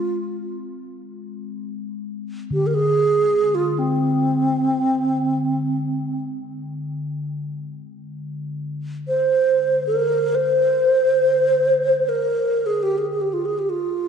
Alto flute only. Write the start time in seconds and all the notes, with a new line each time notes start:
Already playing: F4
2.53 G4
2.67 A#4
2.74 G#4
3.55 F4
3.79 C4
9.08 C5
9.87 A#4
10.35 C5
12.09 A#4
12.66 G#4
12.83 G4
12.98 G#4
13.10 G#4
13.21 G4
13.33 F4
13.45 G#4
13.59 G4
13.70 F4